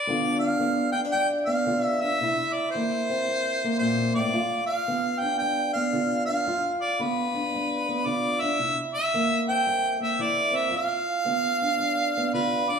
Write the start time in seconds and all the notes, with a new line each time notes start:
Already playing: D5
0.07 G2 D3 B3 D4 F4
0.39 F5
0.59 D3 B3
0.92 B3 G5
1.05 D4
1.12 G2 G5
1.46 B3 F5
1.66 D3 F4
1.83 E5
2.02 D4 E5
2.21 C3 E4
2.53 D5
2.71 E3 C5
2.76 A#3
3.10 C4
3.28 G2
3.64 A#3
3.79 A#2 C5
4.15 A2 D5
4.33 G2 F4
4.66 F5
4.87 D3 B3
5.20 D4 G5
5.38 G2 G5
5.73 B3 F5
5.93 D3 F4
6.26 D4 F5
6.46 G2 F4
6.81 D5
6.99 D3 B3 B4
7.34 D4
7.54 G2
7.89 B3
8.06 D3 F4 D5
8.40 D4 E5
8.59 C3 E4
8.94 E5
9.14 E3 A#3
9.49 C4 G5
9.67 G2
10.00 A#3 E5
10.19 E3 E4 D5
10.52 C4 E5
10.70 G2 F4
10.77 F5
11.25 D3 B3
11.62 D4
11.79 G2
12.17 B3
12.34 D3 F4 B4
12.69 D4 D5